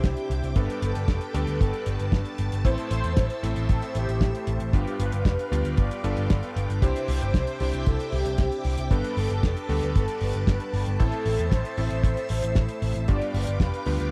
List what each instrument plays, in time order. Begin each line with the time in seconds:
Already playing: electric grand piano C3 C4 D4 E4 G4, analog polysynth G4, string machine C5 E5 G5 D6
0.04 picked electric bass C2, kick, snare, closed hi-hat
0.17 closed hi-hat
0.30 picked electric bass C2, closed hi-hat
0.43 picked electric bass C2, closed hi-hat
0.56 picked electric bass G1, electric grand piano G2 B3 D4 G4 A4, string machine B4 A5, analog polysynth B4, kick, closed hi-hat
0.70 closed hi-hat
0.82 picked electric bass G1, analog polysynth A4, closed hi-hat
0.95 picked electric bass G1, closed hi-hat
1.08 picked electric bass F1, kick, snare, closed hi-hat
1.21 closed hi-hat
1.34 picked electric bass D2, electric grand piano G2 B3 D4 G4 A4, closed hi-hat
1.47 picked electric bass D2, closed hi-hat
1.60 picked electric bass G1, analog polysynth A4, kick, closed hi-hat
1.73 closed hi-hat
1.86 picked electric bass G1, closed hi-hat
2.00 picked electric bass G1, closed hi-hat
2.12 picked electric bass G1, kick, snare, closed hi-hat
2.25 closed hi-hat
2.38 picked electric bass G1, closed hi-hat
2.52 picked electric bass G1, closed hi-hat
2.64 picked electric bass A1, electric grand piano A2 A3 C4 E4 A4, string machine C5 E5 E6, analog polysynth C5, kick, closed hi-hat
2.78 closed hi-hat
2.91 picked electric bass A1, analog polysynth C5, closed hi-hat
3.04 picked electric bass E2, closed hi-hat
3.17 picked electric bass A1, kick, snare, closed hi-hat
3.30 closed hi-hat
3.43 picked electric bass A1, electric grand piano A2 A3 C4 E4 A4, closed hi-hat
3.56 picked electric bass A1, closed hi-hat
3.69 picked electric bass A1, analog polysynth A4, kick, closed hi-hat
3.82 closed hi-hat
3.95 picked electric bass A1, analog polysynth G4, closed hi-hat
4.08 picked electric bass A1, closed hi-hat
4.21 picked electric bass A1, kick, snare, closed hi-hat
4.35 closed hi-hat
4.47 picked electric bass A1, closed hi-hat
4.60 picked electric bass A1, closed hi-hat
4.73 picked electric bass G1, electric grand piano G2 B3 D4 F4 G4, analog polysynth G4, string machine B4 F5 G5 D6, kick, closed hi-hat
4.87 closed hi-hat
5.00 picked electric bass G1, analog polysynth B4, closed hi-hat
5.12 picked electric bass G1, closed hi-hat
5.25 picked electric bass F1, analog polysynth B4, kick, snare, closed hi-hat
5.39 closed hi-hat
5.52 picked electric bass D2, electric grand piano G2 B3 D4 F4 G4, closed hi-hat
5.65 picked electric bass D2, closed hi-hat
5.77 picked electric bass G1, analog polysynth D5, kick, closed hi-hat
5.91 closed hi-hat
6.04 picked electric bass G1, electric grand piano G2 B3 D4 F4 A4, closed hi-hat
6.17 picked electric bass G1, closed hi-hat
6.30 picked electric bass G1, kick, snare, closed hi-hat
6.43 closed hi-hat
6.56 picked electric bass G1, closed hi-hat
6.69 picked electric bass G1, closed hi-hat
6.82 picked electric bass C2, electric grand piano C3 C4 D4 E4 G4, string machine C5 E5, analog polysynth C5, kick, closed hi-hat
6.96 closed hi-hat
7.08 picked electric bass C2, analog polysynth C5, open hi-hat
7.21 picked electric bass G1, closed hi-hat
7.34 picked electric bass C2, kick, snare, closed hi-hat
7.47 closed hi-hat
7.60 picked electric bass C2, electric grand piano C3 C4 D4 E4 G4, open hi-hat
7.74 picked electric bass C2, closed hi-hat
7.86 picked electric bass C2, analog polysynth A4, kick, closed hi-hat
8.00 closed hi-hat
8.12 picked electric bass C2, analog polysynth G4, open hi-hat
8.26 picked electric bass C2, closed hi-hat
8.38 picked electric bass C2, kick, snare, closed hi-hat
8.52 closed hi-hat
8.64 picked electric bass C2, open hi-hat
8.78 picked electric bass C2, closed hi-hat
8.91 picked electric bass G1, electric grand piano G2 B3 D4 G4 A4, analog polysynth B4, string machine B4 A5, kick, closed hi-hat
9.04 closed hi-hat
9.17 picked electric bass G1, analog polysynth A4, open hi-hat
9.30 picked electric bass G1, closed hi-hat
9.43 picked electric bass F1, kick, snare, closed hi-hat
9.57 closed hi-hat
9.69 picked electric bass D2, electric grand piano G2 B3 D4 G4 A4, open hi-hat
9.82 picked electric bass D2, closed hi-hat
9.95 picked electric bass G1, analog polysynth A4, kick, closed hi-hat
10.08 closed hi-hat
10.21 picked electric bass G1, open hi-hat
10.33 picked electric bass G1, closed hi-hat
10.47 picked electric bass G1, analog polysynth B4, kick, snare, closed hi-hat
10.60 closed hi-hat
10.73 picked electric bass G1, open hi-hat
10.86 picked electric bass G1, closed hi-hat
10.99 picked electric bass A1, electric grand piano A2 A3 C4 E4 A4, analog polysynth A4, string machine C5 E5 E6, kick, closed hi-hat
11.12 closed hi-hat
11.26 picked electric bass A1, open hi-hat
11.39 picked electric bass E2, closed hi-hat
11.52 picked electric bass A1, analog polysynth C5, kick, snare, closed hi-hat
11.65 closed hi-hat
11.77 picked electric bass A1, electric grand piano A2 A3 C4 E4 A4, open hi-hat
11.91 picked electric bass A1, closed hi-hat
12.04 picked electric bass A1, analog polysynth C5, kick, closed hi-hat
12.17 closed hi-hat
12.29 picked electric bass A1, open hi-hat
12.42 picked electric bass A1, closed hi-hat
12.55 picked electric bass A1, kick, snare, closed hi-hat
12.69 closed hi-hat
12.82 picked electric bass A1, open hi-hat
12.95 picked electric bass A1, closed hi-hat
13.08 picked electric bass G1, electric grand piano G2 B3 D4 F4 G4, string machine B4 F5 G5 D6, analog polysynth D5, kick, closed hi-hat
13.21 closed hi-hat
13.34 picked electric bass G1, open hi-hat
13.47 picked electric bass G1, closed hi-hat
13.60 picked electric bass F1, analog polysynth B4, kick, snare, closed hi-hat
13.74 closed hi-hat
13.86 picked electric bass D2, electric grand piano G2 B3 D4 F4 G4, open hi-hat
14.00 picked electric bass D2, closed hi-hat